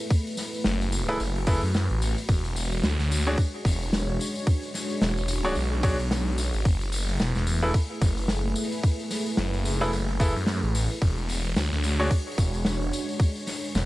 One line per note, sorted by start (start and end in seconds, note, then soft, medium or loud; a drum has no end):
0.00 2.25 A3 medium
0.00 2.25 E4 medium
0.00 2.25 B4 medium
0.10 6.62 F#4 medium
0.10 kick loud
0.10 open hi-hat medium
0.10 tambourine soft
0.27 open hi-hat soft
0.27 tambourine soft
0.37 snare soft
0.37 open hi-hat medium
0.37 tambourine loud
0.54 open hi-hat soft
0.54 tambourine soft
0.64 1.18 F#1 loud
0.64 snare loud
0.64 open hi-hat medium
0.64 tambourine medium
0.81 open hi-hat soft
0.81 tambourine soft
0.92 open hi-hat medium
0.92 tambourine loud
1.08 1.17 E4 medium
1.08 1.17 G#4 medium
1.08 1.17 A4 medium
1.08 1.17 B4 loud
1.08 cross-stick soft
1.08 open hi-hat medium
1.08 tambourine soft
1.20 1.61 F#1 loud
1.20 open hi-hat medium
1.20 tambourine medium
1.35 open hi-hat soft
1.47 1.59 E4 loud
1.47 1.59 G#4 medium
1.47 1.59 A4 medium
1.47 1.59 B4 loud
1.47 kick loud
1.47 open hi-hat medium
1.47 tambourine medium
1.63 1.88 F#2 loud
1.63 open hi-hat medium
1.63 tambourine soft
1.74 snare loud
1.74 open hi-hat medium
1.74 tambourine medium
1.89 2.15 A1 loud
1.89 open hi-hat soft
2.02 open hi-hat medium
2.02 tambourine loud
2.17 open hi-hat soft
2.17 tambourine soft
2.28 2.82 E1 loud
2.28 6.61 G#3 medium
2.28 6.61 D4 medium
2.28 6.61 C#5 medium
2.28 kick loud
2.28 open hi-hat medium
2.28 tambourine medium
2.44 open hi-hat soft
2.44 tambourine soft
2.56 open hi-hat medium
2.56 tambourine loud
2.72 open hi-hat medium
2.72 tambourine soft
2.83 2.97 D2 loud
2.83 snare loud
2.83 tambourine medium
2.99 3.36 D2 medium
2.99 snare soft
2.99 open hi-hat soft
2.99 tambourine soft
3.11 open hi-hat medium
3.11 tambourine loud
3.26 3.35 D4 medium
3.26 3.35 F#4 medium
3.26 3.35 G#4 medium
3.26 3.35 C#5 loud
3.26 open hi-hat medium
3.26 tambourine soft
3.38 kick loud
3.38 open hi-hat medium
3.38 tambourine medium
3.54 open hi-hat soft
3.65 4.18 E1 loud
3.65 kick loud
3.65 cross-stick soft
3.65 open hi-hat medium
3.65 tambourine loud
3.82 open hi-hat soft
3.82 tambourine soft
3.93 snare loud
3.93 open hi-hat medium
3.93 tambourine medium
4.08 open hi-hat soft
4.20 open hi-hat medium
4.20 tambourine loud
4.34 open hi-hat soft
4.34 tambourine soft
4.47 kick loud
4.47 open hi-hat medium
4.47 tambourine medium
4.61 open hi-hat soft
4.61 tambourine soft
4.74 snare soft
4.74 open hi-hat medium
4.74 tambourine loud
4.90 open hi-hat soft
4.90 tambourine soft
5.01 5.54 E1 loud
5.01 snare loud
5.01 open hi-hat medium
5.01 tambourine medium
5.17 open hi-hat soft
5.17 tambourine soft
5.25 open hi-hat soft
5.25 tambourine loud
5.28 open hi-hat medium
5.34 open hi-hat soft
5.44 5.53 D4 medium
5.44 5.53 F#4 medium
5.44 5.53 G#4 medium
5.44 5.53 C#5 loud
5.44 cross-stick soft
5.44 open hi-hat soft
5.44 tambourine soft
5.55 5.97 B1 loud
5.55 open hi-hat medium
5.55 tambourine medium
5.72 open hi-hat soft
5.83 5.95 D4 loud
5.83 5.95 F#4 medium
5.83 5.95 G#4 medium
5.83 5.95 C#5 loud
5.83 kick loud
5.83 open hi-hat medium
5.83 tambourine medium
5.99 6.51 B1 loud
5.99 open hi-hat soft
5.99 tambourine soft
6.11 snare loud
6.11 open hi-hat medium
6.11 tambourine medium
6.27 open hi-hat soft
6.38 cross-stick soft
6.38 open hi-hat medium
6.38 tambourine loud
6.53 6.63 G#1 loud
6.53 open hi-hat medium
6.53 tambourine soft
6.65 7.18 F#1 loud
6.65 10.98 A3 medium
6.65 10.98 E4 medium
6.65 10.98 G#4 medium
6.65 10.98 B4 medium
6.65 kick loud
6.65 open hi-hat medium
6.65 tambourine medium
6.80 open hi-hat soft
6.80 tambourine soft
6.92 open hi-hat medium
6.92 tambourine loud
7.08 open hi-hat soft
7.08 tambourine soft
7.20 7.33 E1 loud
7.20 snare loud
7.20 open hi-hat medium
7.20 tambourine medium
7.35 7.72 E1 loud
7.35 snare soft
7.35 open hi-hat soft
7.35 tambourine soft
7.47 open hi-hat medium
7.47 tambourine loud
7.62 7.71 E4 medium
7.62 7.71 G#4 medium
7.62 7.71 A4 medium
7.62 7.71 B4 loud
7.62 open hi-hat medium
7.62 tambourine soft
7.74 kick loud
7.74 open hi-hat medium
7.74 tambourine medium
8.02 8.54 F#1 loud
8.02 kick loud
8.02 cross-stick soft
8.02 open hi-hat medium
8.02 tambourine medium
8.17 open hi-hat soft
8.17 tambourine soft
8.28 snare loud
8.28 open hi-hat medium
8.28 tambourine medium
8.45 open hi-hat soft
8.56 tambourine loud
8.64 open hi-hat medium
8.72 open hi-hat soft
8.72 tambourine soft
8.83 kick loud
8.83 open hi-hat medium
8.83 tambourine medium
8.99 open hi-hat soft
8.99 tambourine soft
9.11 snare soft
9.11 open hi-hat medium
9.11 tambourine medium
9.26 open hi-hat medium
9.26 tambourine soft
9.37 9.75 F#1 loud
9.37 snare loud
9.37 open hi-hat medium
9.37 tambourine soft
9.53 open hi-hat soft
9.53 tambourine soft
9.65 open hi-hat medium
9.65 tambourine loud
9.75 9.91 F1 loud
9.81 9.90 E4 medium
9.81 9.90 G#4 medium
9.81 9.90 A4 medium
9.81 9.90 B4 loud
9.81 cross-stick soft
9.81 open hi-hat medium
9.81 tambourine soft
9.93 10.33 F#1 medium
9.93 open hi-hat medium
9.93 tambourine medium
10.08 open hi-hat soft
10.20 10.32 E4 loud
10.20 10.32 G#4 medium
10.20 10.32 A4 loud
10.20 10.32 B4 loud
10.20 kick loud
10.20 open hi-hat medium
10.20 tambourine medium
10.36 10.61 F#2 loud
10.36 open hi-hat soft
10.36 tambourine soft
10.47 snare loud
10.47 open hi-hat medium
10.47 tambourine soft
10.63 10.88 A1 loud
10.63 open hi-hat soft
10.74 cross-stick soft
10.74 open hi-hat medium
10.74 tambourine medium
10.90 open hi-hat medium
10.90 tambourine soft
11.01 11.54 E1 loud
11.01 13.85 G#3 medium
11.01 13.85 D4 medium
11.01 13.18 F#4 medium
11.01 13.85 C#5 medium
11.01 kick loud
11.01 open hi-hat medium
11.01 tambourine soft
11.17 open hi-hat soft
11.17 tambourine soft
11.29 open hi-hat loud
11.29 tambourine medium
11.45 open hi-hat soft
11.45 tambourine soft
11.56 11.70 D2 loud
11.56 snare loud
11.56 open hi-hat medium
11.56 tambourine medium
11.72 12.09 D2 loud
11.72 snare soft
11.72 open hi-hat soft
11.72 tambourine soft
11.83 open hi-hat medium
11.83 tambourine medium
12.00 12.08 D4 medium
12.00 12.08 F#4 medium
12.00 12.08 G#4 medium
12.00 12.08 C#5 loud
12.00 open hi-hat medium
12.00 tambourine soft
12.11 kick loud
12.11 open hi-hat medium
12.11 tambourine medium
12.27 open hi-hat soft
12.32 open hi-hat medium
12.38 12.91 E1 loud
12.38 kick loud
12.38 cross-stick soft
12.38 tambourine medium
12.54 open hi-hat medium
12.54 tambourine soft
12.65 snare loud
12.65 open hi-hat medium
12.65 tambourine medium
12.81 open hi-hat soft
12.92 open hi-hat medium
12.92 tambourine medium
13.09 tambourine soft
13.20 13.85 G#4 medium
13.20 kick loud
13.20 open hi-hat medium
13.20 tambourine medium
13.36 open hi-hat soft
13.36 tambourine soft
13.47 snare soft
13.47 open hi-hat loud
13.47 tambourine medium
13.63 open hi-hat medium
13.63 tambourine soft
13.75 13.85 E1 loud
13.75 snare loud
13.75 open hi-hat medium
13.75 tambourine medium